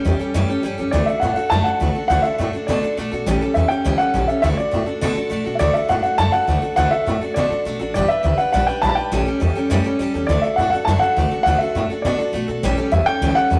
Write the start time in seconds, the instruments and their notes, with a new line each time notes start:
Already playing: upright piano G5
0.05 upright bass E2, steel-string acoustic guitar G3 C#4 G4 A4
0.19 steel-string acoustic guitar G3 C#4 G4 A4
0.34 upright bass F#2, steel-string acoustic guitar A2 E3 G3 C#4 G4 A4
0.48 steel-string acoustic guitar G3 C#4 G4 A4, muted upright bass stroke
0.63 upright bass G2, steel-string acoustic guitar G3 C#4 G4 A4
0.78 upright bass F#2, steel-string acoustic guitar G3 C#4 G4 A4
0.91 upright bass D2, steel-string acoustic guitar D3 A3 D4 F#4 A4, upright piano D5
1.06 steel-string acoustic guitar F#4 A4, upright piano E5, muted upright bass stroke
1.10 steel-string acoustic guitar D4
1.20 upright bass A2, steel-string acoustic guitar A3 D4 F#4, upright piano F#5
1.24 steel-string acoustic guitar A4
1.34 steel-string acoustic guitar F#4 A4, upright piano F#5, muted upright bass stroke
1.39 steel-string acoustic guitar D4
1.50 upright bass F#2, steel-string acoustic guitar D3 A3 D4 F#4 A4, upright piano A5
1.64 steel-string acoustic guitar D4 F#4 A4, upright piano F#5, muted upright bass stroke
1.80 upright bass D2, steel-string acoustic guitar A3 D4 F#4 A4
1.95 steel-string acoustic guitar D4 F#4 A4
2.08 upright bass D2, steel-string acoustic guitar D3 A3 D4 F#4 A4, upright piano F#5
2.22 steel-string acoustic guitar F#4 A4, upright piano E5, muted upright bass stroke
2.27 steel-string acoustic guitar D4
2.38 upright bass A2, steel-string acoustic guitar A3 D4 F#4 A4
2.53 steel-string acoustic guitar D4 F#4 A4, muted upright bass stroke
2.67 upright bass B2, steel-string acoustic guitar D3 A3 D4 F#4 A4, upright piano D5
2.83 steel-string acoustic guitar D4 F#4 A4, muted upright bass stroke
2.97 upright bass B2, steel-string acoustic guitar A3 D4 F#4 A4
3.12 upright bass B2, steel-string acoustic guitar D4 F#4 A4
3.26 upright bass A1, steel-string acoustic guitar A2 E3 G3 C#4 G4 A4
3.41 steel-string acoustic guitar G3 C#4 G4 A4, muted upright bass stroke
3.54 upright bass E2, steel-string acoustic guitar G3 C#4 G4 A4, upright piano E5
3.68 steel-string acoustic guitar C#4 G4 A4, upright piano G5
3.73 steel-string acoustic guitar G3
3.85 upright bass C#2, steel-string acoustic guitar A2 E3 G3 C#4 G4 A4
3.98 steel-string acoustic guitar C#4 G4 A4, upright piano F#5, muted upright bass stroke
4.02 steel-string acoustic guitar G3
4.14 upright bass A1, steel-string acoustic guitar G3 C#4 G4 A4
4.28 steel-string acoustic guitar G3 C#4 G4 A4, upright piano E5
4.42 upright bass D2, steel-string acoustic guitar D3 A3 D4 F#4 A4, upright piano E5
4.57 steel-string acoustic guitar D4 F#4 A4, upright piano D5, muted upright bass stroke
4.71 upright bass A2, steel-string acoustic guitar A3 D4 F#4 A4
4.86 steel-string acoustic guitar D4 F#4 A4, muted upright bass stroke
5.01 upright bass B2, steel-string acoustic guitar D3 A3 D4 F#4 A4
5.15 steel-string acoustic guitar D4 F#4 A4, muted upright bass stroke
5.30 upright bass B2, steel-string acoustic guitar A3 D4 F#4 A4
5.44 upright bass B2, steel-string acoustic guitar D4 F#4 A4
5.55 upright piano E5
5.59 upright bass D2, steel-string acoustic guitar D3 A3 D4 F#4 A4, upright piano D5
5.74 steel-string acoustic guitar D4 F#4 A4, upright piano E5
5.89 upright bass A2, steel-string acoustic guitar A3 D4 F#4 A4, upright piano F#5
6.03 steel-string acoustic guitar D4 F#4 A4, upright piano F#5, muted upright bass stroke
6.18 upright bass F#2, steel-string acoustic guitar D3 A3 D4 F#4 A4, upright piano A5
6.32 steel-string acoustic guitar D4 F#4 A4, upright piano F#5, muted upright bass stroke
6.47 upright bass D2, steel-string acoustic guitar A3 D4 F#4 A4
6.62 steel-string acoustic guitar D4 F#4 A4, muted upright bass stroke
6.76 upright bass D2, steel-string acoustic guitar D3 A3 D4 F#4 A4, upright piano F#5
6.91 steel-string acoustic guitar D4 F#4 A4, upright piano E5, muted upright bass stroke
7.06 upright bass A2, steel-string acoustic guitar A3 D4 F#4 A4
7.21 steel-string acoustic guitar D4 F#4 A4, muted upright bass stroke
7.34 upright bass B2, steel-string acoustic guitar D3 A3 D4 F#4 A4, upright piano D5
7.50 steel-string acoustic guitar D4 F#4 A4, muted upright bass stroke
7.65 upright bass B2, steel-string acoustic guitar A3 D4 F#4 A4
7.79 upright bass A1, steel-string acoustic guitar D4 F#4 A4
7.94 upright bass G1, steel-string acoustic guitar G3 D4 G4 B4, upright piano D5
8.08 steel-string acoustic guitar D4 G4 B4, upright piano E5, muted upright bass stroke
8.23 upright bass D2, steel-string acoustic guitar G3 D4 G4 B4
8.38 steel-string acoustic guitar D4 G4 B4, upright piano F#5, muted upright bass stroke
8.52 upright bass B1, steel-string acoustic guitar G3 D4 G4 B4, upright piano F#5
8.67 steel-string acoustic guitar D4 G4 B4, upright piano G5, muted upright bass stroke
8.82 upright bass B1, steel-string acoustic guitar G3 D4 G4 B4, upright piano A5 B5
8.89 upright piano A5
8.95 steel-string acoustic guitar G4 B4, upright piano G5, muted upright bass stroke
8.99 steel-string acoustic guitar D4
9.12 upright bass A1, steel-string acoustic guitar A2 E3 G3 C#4 G4 A4
9.26 steel-string acoustic guitar G3 C#4 G4 A4, muted upright bass stroke
9.40 upright bass E2, steel-string acoustic guitar G3 C#4 G4 A4
9.55 steel-string acoustic guitar G3 C#4 G4 A4
9.70 upright bass F#2, steel-string acoustic guitar A2 E3 G3 C#4 G4 A4
9.84 steel-string acoustic guitar G3 C#4 G4 A4, muted upright bass stroke
9.99 upright bass G2, steel-string acoustic guitar G3 C#4 G4 A4
10.14 upright bass E2, steel-string acoustic guitar G3 C#4 G4 A4
10.27 upright bass D2, steel-string acoustic guitar D3 A3 D4 F#4, upright piano D5
10.31 steel-string acoustic guitar A4
10.42 steel-string acoustic guitar A4, upright piano E5, muted upright bass stroke
10.46 steel-string acoustic guitar D4 F#4
10.56 upright bass A2, steel-string acoustic guitar A3 D4 F#4, upright piano F#5
10.60 steel-string acoustic guitar A4
10.70 steel-string acoustic guitar A4, upright piano F#5, muted upright bass stroke
10.74 steel-string acoustic guitar D4 F#4
10.85 upright bass F#2, steel-string acoustic guitar D3 A3 D4, upright piano A5
10.89 steel-string acoustic guitar F#4 A4
10.99 steel-string acoustic guitar F#4 A4, upright piano F#5, muted upright bass stroke
11.04 steel-string acoustic guitar D4
11.16 upright bass D2, steel-string acoustic guitar A3 D4 F#4 A4
11.31 steel-string acoustic guitar D4 F#4 A4, muted upright bass stroke
11.43 upright bass D2, steel-string acoustic guitar D3 A3, upright piano F#5
11.47 steel-string acoustic guitar D4 F#4 A4
11.58 steel-string acoustic guitar A4, upright piano E5, muted upright bass stroke
11.62 steel-string acoustic guitar D4 F#4
11.75 upright bass A2, steel-string acoustic guitar A3 D4 F#4 A4
11.90 steel-string acoustic guitar D4 F#4 A4, muted upright bass stroke
12.02 upright bass B2, steel-string acoustic guitar D3 A3 D4, upright piano D5
12.06 steel-string acoustic guitar F#4 A4
12.18 steel-string acoustic guitar D4 F#4 A4, muted upright bass stroke
12.33 upright bass B2, steel-string acoustic guitar A3 D4 F#4 A4
12.48 upright bass B2, steel-string acoustic guitar D4 F#4 A4
12.63 upright bass A1, steel-string acoustic guitar A2 E3 G3 C#4 G4 A4
12.77 steel-string acoustic guitar G3 C#4 G4 A4, muted upright bass stroke
12.92 upright bass E2, steel-string acoustic guitar G3 C#4 G4 A4, upright piano E5
13.06 steel-string acoustic guitar G3 C#4 G4 A4, upright piano G5, muted upright bass stroke
13.21 upright bass C#2, steel-string acoustic guitar A2 E3 G3 C#4 G4 A4
13.35 steel-string acoustic guitar G3 C#4 G4 A4, upright piano F#5
13.50 upright bass E2, steel-string acoustic guitar G3 C#4 G4 A4